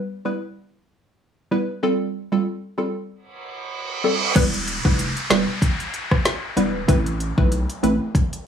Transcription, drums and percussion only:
4.36 kick, closed hi-hat, crash
4.54 closed hi-hat
4.68 closed hi-hat
4.85 kick
4.99 closed hi-hat
5.17 closed hi-hat
5.30 snare, closed hi-hat
5.62 kick, closed hi-hat
5.80 closed hi-hat
5.94 closed hi-hat
6.11 kick, cross-stick
6.25 snare, closed hi-hat
6.57 closed hi-hat
6.88 kick, closed hi-hat
7.06 closed hi-hat
7.20 closed hi-hat
7.38 kick
7.52 closed hi-hat
7.70 closed hi-hat
7.84 closed hi-hat
8.15 kick, closed hi-hat
8.33 closed hi-hat

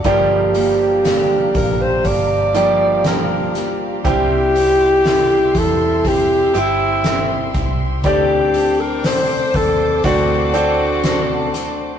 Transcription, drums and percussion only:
0.04 kick, hi-hat pedal, open hi-hat
0.54 hi-hat pedal, open hi-hat
1.05 snare, hi-hat pedal, open hi-hat
1.54 kick, hi-hat pedal, open hi-hat
2.05 kick, hi-hat pedal, open hi-hat
2.55 hi-hat pedal, open hi-hat
3.04 snare, hi-hat pedal, open hi-hat
3.55 snare, hi-hat pedal, open hi-hat
4.05 kick, hi-hat pedal, open hi-hat
4.56 hi-hat pedal, open hi-hat
5.05 snare, hi-hat pedal, open hi-hat
5.54 kick, hi-hat pedal, open hi-hat
6.05 kick, hi-hat pedal, open hi-hat
6.55 hi-hat pedal, open hi-hat
7.04 snare, hi-hat pedal, open hi-hat
7.54 kick, snare, hi-hat pedal, open hi-hat
8.04 kick, hi-hat pedal, open hi-hat
8.54 hi-hat pedal, open hi-hat
9.04 snare, hi-hat pedal, open hi-hat
9.54 kick, hi-hat pedal, open hi-hat
10.04 kick, hi-hat pedal, open hi-hat
10.54 hi-hat pedal, open hi-hat
11.04 snare, hi-hat pedal, open hi-hat
11.54 snare, hi-hat pedal, open hi-hat

